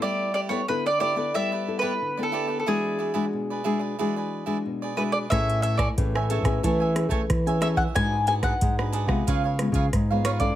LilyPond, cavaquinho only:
\new Staff \with { instrumentName = "Cavaquinho" } { \time 4/4 \key e \mixolydian \tempo 4 = 91 <e' g' b' d''>8 <e' g' b' d''>16 <e' g' b' d''>16 r16 <g' b' d''>16 <e' g' b' d''>16 <g' b' d''>16 <e' g' b' d''>16 <g' b' d''>8 <e' g' b' d''>16 r16 <g' b' d''>16 <e' g' b' d''>16 <g' b' d''>16 | <e' gis' b' d''>8 <e' gis' b' d''>16 <e' gis' b' d''>16 r16 <gis' b' d''>16 <e' gis' b' d''>16 <gis' b' d''>16 <e' gis' b' d''>16 <gis' b' d''>8 <e' gis' b' d''>16 r16 <gis' b' d''>16 <e' gis' b' d''>16 <gis' b' d''>16 | <a' cis'' e'' gis''>8 <a' cis'' e'' gis''>16 <a' cis'' e'' gis''>16 r16 <cis'' e'' gis''>16 <a' cis'' e'' gis''>16 <cis'' e'' gis''>16 <a' cis'' e'' gis''>16 <cis'' e'' gis''>8 <a' cis'' e'' gis''>16 r16 <cis'' e'' gis''>16 <a' cis'' e'' gis''>16 <cis'' e'' gis''>16 | <d' gis' b' fis''>8 <d' gis' b' fis''>16 <d' gis' b' fis''>16 r16 <gis' b' fis''>16 <d' gis' b' fis''>16 <gis' b' fis''>16 <eis' b' cis'' eis''>16 <b' cis'' eis''>8 <eis' b' cis'' eis''>16 r16 <b' cis'' eis''>16 <eis' b' cis'' eis''>16 <b' cis'' eis''>16 | }